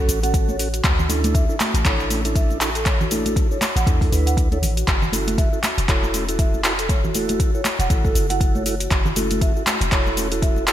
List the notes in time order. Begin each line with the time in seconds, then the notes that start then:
Already playing: C#4 F#4 A4
0.09 A1, open hi-hat, cabasa
0.23 C#4 F#4 A4 F#5, closed hi-hat, muted conga, cabasa
0.34 kick, closed hi-hat, cabasa
0.48 C#5, muted conga, high conga, cabasa
0.59 C#4 F#4 A4, open hi-hat, cabasa
0.74 F#4, closed hi-hat, cabasa
0.84 D2 F#4, kick, clap, closed hi-hat, muted conga, cabasa
0.99 low conga, cabasa
1.09 C#4 D4 E4 A4, open hi-hat, muted conga, high conga, cabasa
1.24 closed hi-hat, high conga, cabasa
1.35 E5, kick, closed hi-hat, muted conga, cabasa
1.49 D4 E4 A4, cabasa
1.60 F#4, clap, open hi-hat, muted conga, high conga, cabasa
1.74 A1, closed hi-hat, cabasa
1.85 A1 D4 E4 A4 C#5, kick, clap, closed hi-hat, cabasa
2.00 muted conga, cabasa
2.10 C#4, open hi-hat, high conga, cabasa
2.25 D4 E4 A4, closed hi-hat, cabasa
2.35 E5, kick, closed hi-hat, cabasa
2.50 muted conga, cabasa
2.61 D4 E4 F#4 A4, clap, open hi-hat, cabasa
2.75 A4, closed hi-hat, cabasa
2.86 C#5, kick, clap, closed hi-hat, muted conga, cabasa
3.01 F#4, low conga, cabasa
3.11 D4 E4 A4, open hi-hat, muted conga, high conga, cabasa
3.26 F#4, closed hi-hat, high conga, cabasa
3.36 kick, closed hi-hat, cabasa
3.51 D4 E4 A4 C#5, cabasa
3.61 clap, open hi-hat, muted conga, high conga, cabasa
3.76 A1 F#5, closed hi-hat, cabasa
3.87 E2 D4 E4 A4, kick, closed hi-hat, cabasa
4.01 A4, kick, open hi-hat, muted conga, cabasa
4.12 D2 D4 E4 B4, open hi-hat, cabasa
4.27 F#5, closed hi-hat, muted conga, cabasa
4.37 kick, closed hi-hat, cabasa
4.51 D4 E4 A4 C#5, closed hi-hat, muted conga, high conga, cabasa
4.62 A1, open hi-hat, low conga, cabasa
4.77 F#4, closed hi-hat, cabasa
4.88 F#1 F#4, kick, clap, closed hi-hat, muted conga, cabasa
5.02 low conga, cabasa
5.13 C#4 E4 F#4 A4, open hi-hat, muted conga, high conga, cabasa
5.27 closed hi-hat, high conga, cabasa
5.38 E5, kick, closed hi-hat, muted conga, cabasa
5.53 E4 F#4 A4, cabasa
5.63 F#4, clap, open hi-hat, muted conga, high conga, cabasa
5.78 E1, closed hi-hat, cabasa
5.88 E1 E4 F#4 A4 C#5, kick, clap, closed hi-hat, cabasa
6.03 muted conga, cabasa
6.14 C#4, open hi-hat, high conga, cabasa
6.28 E4 F#4 A4, closed hi-hat, muted conga, cabasa
6.39 E5, kick, closed hi-hat, cabasa
6.54 muted conga, cabasa
6.64 E4 F#4 A4, clap, open hi-hat, cabasa
6.79 A4, closed hi-hat, cabasa
6.89 C#5, kick, closed hi-hat, muted conga, cabasa
7.04 F#4, low conga, cabasa
7.15 E4 F#4 A4, open hi-hat, muted conga, high conga, cabasa
7.29 F#4, closed hi-hat, high conga, cabasa
7.40 kick, closed hi-hat, muted conga, cabasa
7.54 E4 F#4 A4 C#5, cabasa
7.65 clap, open hi-hat, muted conga, high conga, cabasa
7.79 E1 F#5, closed hi-hat, cabasa
7.90 A1 E4 F#4 A4, kick, closed hi-hat, cabasa
8.05 A4, kick, muted conga, cabasa
8.15 F#1, open hi-hat, cabasa
8.29 E4 F#4 A4 F#5, closed hi-hat, muted conga, cabasa
8.41 kick, closed hi-hat, cabasa
8.55 C#5, muted conga, high conga, cabasa
8.66 E4 F#4 A4, open hi-hat, cabasa
8.80 F#4, closed hi-hat, cabasa
8.91 F#1 F#4, kick, clap, closed hi-hat, muted conga, cabasa
9.05 low conga, cabasa
9.16 C#4 E4 F#4 A4, open hi-hat, muted conga, high conga, cabasa
9.31 closed hi-hat, high conga, cabasa
9.41 E5, kick, closed hi-hat, cabasa
9.56 E4 F#4 A4, cabasa
9.67 F#4, clap, open hi-hat, muted conga, high conga, cabasa
9.81 E1, closed hi-hat, cabasa
9.92 E1 E4 F#4 A4 C#5, kick, clap, closed hi-hat, cabasa
10.07 muted conga, cabasa
10.17 C#4, open hi-hat, high conga, cabasa
10.31 E4 F#4 A4, closed hi-hat, muted conga, cabasa
10.42 E5, kick, closed hi-hat, cabasa
10.56 muted conga, cabasa
10.67 E4 F#4 A4, clap, open hi-hat, cabasa